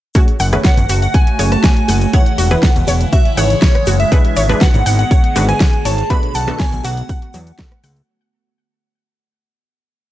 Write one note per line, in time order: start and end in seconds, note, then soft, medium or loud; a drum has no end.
0.15 4.08 C#3 medium
0.15 2.11 A3 medium
0.15 0.50 A3 medium
0.15 0.50 C#4 medium
0.15 2.11 F#4 medium
0.15 0.50 F#4 medium
0.15 0.26 F#4 medium
0.15 0.50 G#4 medium
0.15 0.50 C#5 loud
0.15 kick loud
0.15 closed hi-hat medium
0.15 shaker soft
0.28 closed hi-hat soft
0.40 0.58 F#1 loud
0.40 0.47 F#5 medium
0.40 open hi-hat loud
0.40 shaker medium
0.53 1.36 A3 medium
0.53 1.36 C#4 medium
0.53 1.36 F#4 medium
0.53 1.36 G#4 medium
0.53 1.36 B4 loud
0.53 cross-stick medium
0.53 closed hi-hat soft
0.53 high bongo medium
0.53 low conga medium
0.53 shaker soft
0.64 0.76 C#5 medium
0.64 1.00 F#5 medium
0.64 1.02 F#5 medium
0.64 kick loud
0.64 snare loud
0.64 closed hi-hat medium
0.64 shaker medium
0.77 0.86 F#1 loud
0.77 closed hi-hat soft
0.77 low conga medium
0.77 shaker soft
0.89 1.07 F#1 medium
0.89 1.00 F#4 medium
0.89 open hi-hat loud
0.89 shaker loud
1.02 1.13 F#5 medium
1.02 1.16 F#5 medium
1.02 closed hi-hat soft
1.02 shaker soft
1.14 1.22 F#5 medium
1.14 1.49 G#5 loud
1.14 1.53 G#5 loud
1.14 kick loud
1.14 closed hi-hat medium
1.14 high conga medium
1.14 shaker medium
1.27 closed hi-hat soft
1.39 1.57 F#1 loud
1.39 2.11 A3 medium
1.39 2.11 C#4 medium
1.39 2.11 F#4 medium
1.39 2.11 G#4 medium
1.39 1.50 C#5 medium
1.39 2.11 C#5 medium
1.39 open hi-hat loud
1.39 shaker medium
1.52 1.63 A5 loud
1.52 1.65 A5 loud
1.52 cross-stick medium
1.52 closed hi-hat soft
1.52 shaker soft
1.64 1.75 F#4 medium
1.64 2.10 G#5 loud
1.64 2.15 G#5 loud
1.64 kick loud
1.64 snare loud
1.64 closed hi-hat medium
1.64 shaker medium
1.77 closed hi-hat soft
1.88 2.07 F#1 loud
1.88 1.96 F#5 medium
1.88 open hi-hat loud
1.88 high bongo medium
1.88 high conga medium
1.88 shaker medium
2.01 closed hi-hat soft
2.01 shaker soft
2.13 4.10 E3 medium
2.13 2.48 E3 medium
2.13 6.06 G#3 medium
2.13 4.10 E4 medium
2.13 2.48 E4 medium
2.13 2.48 G#4 medium
2.13 2.24 C#5 medium
2.13 2.48 C#5 loud
2.13 3.12 F#5 loud
2.13 3.09 F#5 loud
2.13 kick loud
2.13 closed hi-hat medium
2.13 shaker medium
2.26 closed hi-hat soft
2.38 2.56 E1 medium
2.38 2.49 F#4 medium
2.38 open hi-hat loud
2.38 shaker loud
2.51 3.35 E3 medium
2.51 3.35 E4 medium
2.51 3.35 G#4 medium
2.51 3.35 B4 medium
2.51 cross-stick medium
2.51 closed hi-hat soft
2.51 high bongo medium
2.51 low conga medium
2.51 shaker soft
2.63 2.70 F#5 medium
2.63 kick loud
2.63 snare loud
2.63 closed hi-hat medium
2.63 shaker medium
2.76 2.84 E1 loud
2.76 closed hi-hat soft
2.76 low conga medium
2.76 shaker soft
2.87 3.06 E1 medium
2.87 2.99 C#5 medium
2.87 open hi-hat loud
2.87 high bongo medium
2.87 shaker loud
3.00 closed hi-hat soft
3.00 shaker soft
3.12 3.24 F#4 medium
3.12 3.39 E5 loud
3.12 3.36 E5 loud
3.12 kick loud
3.12 closed hi-hat medium
3.12 high conga medium
3.12 shaker medium
3.25 closed hi-hat soft
3.37 3.55 G#1 medium
3.37 4.09 E3 medium
3.37 4.09 E4 medium
3.37 4.09 G#4 medium
3.37 3.61 C#5 medium
3.37 3.60 C#5 medium
3.37 4.09 C#5 medium
3.37 3.45 F#5 medium
3.37 open hi-hat loud
3.37 shaker loud
3.50 closed hi-hat soft
3.50 shaker soft
3.62 4.01 C#5 loud
3.62 3.97 C#5 medium
3.62 3.73 C#5 medium
3.62 kick loud
3.62 snare loud
3.62 closed hi-hat medium
3.62 shaker soft
3.75 cross-stick medium
3.75 closed hi-hat soft
3.87 4.05 F#1 medium
3.87 3.98 F#4 medium
3.87 open hi-hat loud
3.87 high conga medium
3.87 shaker loud
3.99 4.63 E5 loud
3.99 4.57 E5 loud
3.99 closed hi-hat soft
3.99 shaker soft
4.12 8.05 D3 medium
4.12 4.46 G#3 medium
4.12 8.05 B3 medium
4.12 4.46 D4 medium
4.12 4.46 G#4 medium
4.12 6.08 G#4 loud
4.12 4.46 B4 loud
4.12 4.19 F#5 medium
4.12 kick loud
4.12 closed hi-hat medium
4.12 shaker medium
4.25 closed hi-hat soft
4.36 4.55 G#1 loud
4.36 4.48 C#5 medium
4.36 open hi-hat loud
4.36 shaker loud
4.49 5.33 G#3 medium
4.49 5.33 D4 medium
4.49 5.33 G#4 medium
4.49 5.33 B4 medium
4.49 cross-stick medium
4.49 closed hi-hat soft
4.49 high bongo medium
4.49 low conga medium
4.49 shaker soft
4.61 4.72 F#4 medium
4.61 4.96 F#5 loud
4.61 4.98 F#5 loud
4.61 kick loud
4.61 snare loud
4.61 closed hi-hat medium
4.61 shaker medium
4.74 4.83 G#1 loud
4.74 closed hi-hat soft
4.74 low conga medium
4.74 shaker soft
4.86 5.04 G#1 medium
4.86 4.93 F#5 medium
4.86 open hi-hat loud
4.86 shaker medium
4.99 5.45 F#5 loud
4.99 5.50 F#5 loud
4.99 closed hi-hat soft
4.99 shaker soft
5.11 5.22 C#5 medium
5.11 kick loud
5.11 closed hi-hat medium
5.11 high conga medium
5.11 shaker medium
5.24 closed hi-hat soft
5.36 5.54 G#1 medium
5.36 6.07 G#3 medium
5.36 6.07 D4 medium
5.36 5.47 F#4 medium
5.36 6.07 G#4 medium
5.36 6.07 B4 medium
5.36 open hi-hat loud
5.36 shaker loud
5.48 5.83 G#5 loud
5.48 5.87 G#5 loud
5.48 cross-stick medium
5.48 closed hi-hat soft
5.48 shaker soft
5.60 5.68 F#5 medium
5.60 kick loud
5.60 snare loud
5.60 closed hi-hat medium
5.60 shaker medium
5.73 closed hi-hat soft
5.85 6.03 G#1 medium
5.85 5.96 C#5 medium
5.85 6.08 A5 loud
5.85 6.12 A5 loud
5.85 open hi-hat loud
5.85 high bongo medium
5.85 high conga medium
5.85 shaker loud
5.98 closed hi-hat soft
5.98 shaker soft
6.10 6.45 B2 medium
6.10 6.45 A3 medium
6.10 8.07 A3 medium
6.10 6.45 B3 medium
6.10 6.45 D4 medium
6.10 6.21 F#4 medium
6.10 6.45 F#4 medium
6.10 8.07 F#4 medium
6.10 6.45 B4 loud
6.10 6.33 B5 loud
6.10 6.36 B5 loud
6.10 kick loud
6.10 closed hi-hat medium
6.10 shaker medium
6.23 closed hi-hat soft
6.34 6.53 B1 medium
6.34 6.42 F#5 medium
6.34 6.61 A5 loud
6.34 6.58 A5 loud
6.34 open hi-hat loud
6.34 shaker medium
6.47 7.31 B2 medium
6.47 7.31 A3 medium
6.47 7.31 B3 medium
6.47 7.31 D4 medium
6.47 7.31 F#4 medium
6.47 7.31 A4 loud
6.47 cross-stick medium
6.47 closed hi-hat soft
6.47 high bongo medium
6.47 low conga medium
6.47 shaker soft
6.59 6.71 C#5 medium
6.59 6.86 G#5 loud
6.59 6.83 G#5 loud
6.59 kick loud
6.59 snare loud
6.59 closed hi-hat medium
6.59 shaker medium
6.71 6.81 B1 loud
6.71 closed hi-hat soft
6.71 low conga medium
6.71 shaker soft
6.84 7.03 B1 medium
6.84 6.95 F#4 medium
6.84 7.84 F#5 loud
6.84 7.80 F#5 loud
6.84 open hi-hat loud
6.84 high bongo medium
6.84 shaker loud
6.97 closed hi-hat soft
6.97 shaker soft
7.09 7.17 F#5 medium
7.09 kick loud
7.09 closed hi-hat medium
7.09 high conga medium
7.09 shaker medium
7.22 closed hi-hat soft
7.34 7.52 E2 medium
7.34 7.38 F#3 medium
7.34 open hi-hat loud
7.34 shaker loud
7.47 closed hi-hat soft
7.47 shaker soft
7.58 7.66 A4 medium
7.58 kick loud
7.58 snare loud
7.58 closed hi-hat medium
7.58 shaker medium
7.72 cross-stick medium
7.72 closed hi-hat soft
7.84 8.02 C#2 medium
7.84 7.91 F#5 medium
7.84 open hi-hat loud
7.84 high conga medium
7.84 shaker loud
7.97 closed hi-hat soft